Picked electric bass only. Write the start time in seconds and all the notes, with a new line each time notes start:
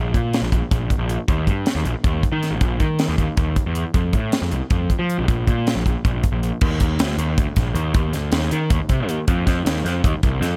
Already playing: A#1
0.14 A#2
0.42 A#1
0.52 A#1
0.72 A#1
0.98 A#1
1.28 D#2
1.47 G2
1.75 D#2
1.84 A#1
2.04 D#2
2.32 D#3
2.51 A#1
2.61 A#1
2.80 D#3
3.08 D#2
3.18 D#2
3.37 D#2
3.66 E2
3.94 F2
4.13 A2
4.42 F2
4.52 C2
4.71 F2
4.99 F3
5.18 C2
5.28 A#1
5.48 A#2
5.76 A#1
5.86 A#1
6.05 A#1
6.32 A#1
6.62 D#2
6.81 D#2
6.99 D2
7.18 D#2
7.38 D2
7.57 A#1
7.74 D#2
7.94 D#2
8.13 D2
8.32 D#2
8.52 D#3
8.70 D#2
8.89 C3
9.08 D#2
9.28 F2
9.47 F2
9.65 D#2
9.85 F2
10.04 D#2
10.23 C2
10.41 F2